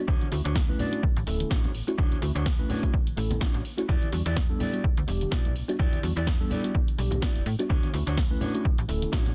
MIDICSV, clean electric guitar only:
0, 0, Header, 1, 3, 480
1, 0, Start_track
1, 0, Tempo, 476190
1, 80, Time_signature, 4, 2, 24, 8
1, 9422, End_track
2, 0, Start_track
2, 0, Title_t, "Clean electric guitar"
2, 0, Program_c, 0, 27
2, 75, Note_on_c, 0, 62, 109
2, 81, Note_on_c, 0, 66, 99
2, 87, Note_on_c, 0, 73, 118
2, 265, Note_off_c, 0, 62, 0
2, 268, Note_off_c, 0, 66, 0
2, 271, Note_off_c, 0, 73, 0
2, 447, Note_on_c, 0, 62, 85
2, 453, Note_on_c, 0, 66, 77
2, 459, Note_on_c, 0, 73, 98
2, 556, Note_off_c, 0, 62, 0
2, 559, Note_off_c, 0, 66, 0
2, 562, Note_off_c, 0, 73, 0
2, 794, Note_on_c, 0, 62, 85
2, 800, Note_on_c, 0, 66, 79
2, 807, Note_on_c, 0, 74, 94
2, 1037, Note_off_c, 0, 62, 0
2, 1040, Note_off_c, 0, 66, 0
2, 1043, Note_off_c, 0, 74, 0
2, 1513, Note_on_c, 0, 62, 88
2, 1519, Note_on_c, 0, 66, 78
2, 1525, Note_on_c, 0, 73, 97
2, 1704, Note_off_c, 0, 62, 0
2, 1707, Note_off_c, 0, 66, 0
2, 1710, Note_off_c, 0, 73, 0
2, 1992, Note_on_c, 0, 62, 110
2, 1999, Note_on_c, 0, 66, 100
2, 2005, Note_on_c, 0, 73, 122
2, 2183, Note_off_c, 0, 62, 0
2, 2187, Note_off_c, 0, 66, 0
2, 2190, Note_off_c, 0, 73, 0
2, 2368, Note_on_c, 0, 62, 87
2, 2375, Note_on_c, 0, 66, 79
2, 2380, Note_on_c, 0, 73, 95
2, 2477, Note_off_c, 0, 62, 0
2, 2480, Note_off_c, 0, 66, 0
2, 2483, Note_off_c, 0, 73, 0
2, 2712, Note_on_c, 0, 62, 86
2, 2717, Note_on_c, 0, 66, 79
2, 2724, Note_on_c, 0, 73, 94
2, 2956, Note_off_c, 0, 62, 0
2, 2959, Note_off_c, 0, 66, 0
2, 2962, Note_off_c, 0, 73, 0
2, 3432, Note_on_c, 0, 62, 83
2, 3439, Note_on_c, 0, 66, 80
2, 3445, Note_on_c, 0, 73, 96
2, 3624, Note_off_c, 0, 62, 0
2, 3627, Note_off_c, 0, 66, 0
2, 3630, Note_off_c, 0, 73, 0
2, 3914, Note_on_c, 0, 64, 111
2, 3920, Note_on_c, 0, 67, 102
2, 3926, Note_on_c, 0, 74, 120
2, 4104, Note_off_c, 0, 64, 0
2, 4107, Note_off_c, 0, 67, 0
2, 4110, Note_off_c, 0, 74, 0
2, 4289, Note_on_c, 0, 64, 85
2, 4295, Note_on_c, 0, 67, 76
2, 4301, Note_on_c, 0, 74, 96
2, 4397, Note_off_c, 0, 64, 0
2, 4400, Note_off_c, 0, 67, 0
2, 4403, Note_off_c, 0, 74, 0
2, 4634, Note_on_c, 0, 64, 84
2, 4639, Note_on_c, 0, 67, 79
2, 4646, Note_on_c, 0, 74, 95
2, 4877, Note_off_c, 0, 64, 0
2, 4880, Note_off_c, 0, 67, 0
2, 4883, Note_off_c, 0, 74, 0
2, 5355, Note_on_c, 0, 64, 87
2, 5361, Note_on_c, 0, 67, 79
2, 5366, Note_on_c, 0, 74, 94
2, 5545, Note_off_c, 0, 64, 0
2, 5548, Note_off_c, 0, 67, 0
2, 5550, Note_off_c, 0, 74, 0
2, 5834, Note_on_c, 0, 64, 110
2, 5840, Note_on_c, 0, 67, 98
2, 5846, Note_on_c, 0, 74, 123
2, 6025, Note_off_c, 0, 64, 0
2, 6027, Note_off_c, 0, 67, 0
2, 6030, Note_off_c, 0, 74, 0
2, 6209, Note_on_c, 0, 64, 85
2, 6216, Note_on_c, 0, 67, 78
2, 6222, Note_on_c, 0, 74, 93
2, 6317, Note_off_c, 0, 64, 0
2, 6320, Note_off_c, 0, 67, 0
2, 6324, Note_off_c, 0, 74, 0
2, 6552, Note_on_c, 0, 64, 86
2, 6558, Note_on_c, 0, 67, 81
2, 6564, Note_on_c, 0, 74, 94
2, 6796, Note_off_c, 0, 64, 0
2, 6799, Note_off_c, 0, 67, 0
2, 6802, Note_off_c, 0, 74, 0
2, 7275, Note_on_c, 0, 64, 88
2, 7281, Note_on_c, 0, 67, 80
2, 7287, Note_on_c, 0, 74, 95
2, 7465, Note_off_c, 0, 64, 0
2, 7468, Note_off_c, 0, 67, 0
2, 7471, Note_off_c, 0, 74, 0
2, 7754, Note_on_c, 0, 62, 108
2, 7759, Note_on_c, 0, 66, 104
2, 7765, Note_on_c, 0, 73, 124
2, 7944, Note_off_c, 0, 62, 0
2, 7947, Note_off_c, 0, 66, 0
2, 7950, Note_off_c, 0, 73, 0
2, 8129, Note_on_c, 0, 62, 85
2, 8136, Note_on_c, 0, 66, 80
2, 8142, Note_on_c, 0, 73, 95
2, 8237, Note_off_c, 0, 62, 0
2, 8241, Note_off_c, 0, 66, 0
2, 8244, Note_off_c, 0, 73, 0
2, 8476, Note_on_c, 0, 62, 86
2, 8481, Note_on_c, 0, 66, 77
2, 8487, Note_on_c, 0, 73, 94
2, 8718, Note_off_c, 0, 62, 0
2, 8721, Note_off_c, 0, 66, 0
2, 8724, Note_off_c, 0, 73, 0
2, 9192, Note_on_c, 0, 62, 86
2, 9198, Note_on_c, 0, 66, 82
2, 9205, Note_on_c, 0, 73, 99
2, 9383, Note_off_c, 0, 62, 0
2, 9386, Note_off_c, 0, 66, 0
2, 9390, Note_off_c, 0, 73, 0
2, 9422, End_track
3, 0, Start_track
3, 0, Title_t, "Muted clean electric guitar strokes"
3, 690, Note_on_c, 9, 29, 32
3, 791, Note_off_c, 9, 29, 0
3, 1272, Note_on_c, 9, 29, 32
3, 1373, Note_off_c, 9, 29, 0
3, 1888, Note_on_c, 9, 29, 114
3, 1988, Note_off_c, 9, 29, 0
3, 2609, Note_on_c, 9, 29, 32
3, 2710, Note_off_c, 9, 29, 0
3, 3195, Note_on_c, 9, 29, 31
3, 3296, Note_off_c, 9, 29, 0
3, 3807, Note_on_c, 9, 29, 116
3, 3908, Note_off_c, 9, 29, 0
3, 4528, Note_on_c, 9, 29, 32
3, 4628, Note_off_c, 9, 29, 0
3, 5114, Note_on_c, 9, 29, 33
3, 5214, Note_off_c, 9, 29, 0
3, 5728, Note_on_c, 9, 29, 113
3, 5829, Note_off_c, 9, 29, 0
3, 6448, Note_on_c, 9, 29, 32
3, 6548, Note_off_c, 9, 29, 0
3, 7033, Note_on_c, 9, 29, 33
3, 7134, Note_off_c, 9, 29, 0
3, 7649, Note_on_c, 9, 29, 115
3, 7750, Note_off_c, 9, 29, 0
3, 8371, Note_on_c, 9, 29, 33
3, 8472, Note_off_c, 9, 29, 0
3, 8954, Note_on_c, 9, 29, 32
3, 9055, Note_off_c, 9, 29, 0
3, 9422, End_track
0, 0, End_of_file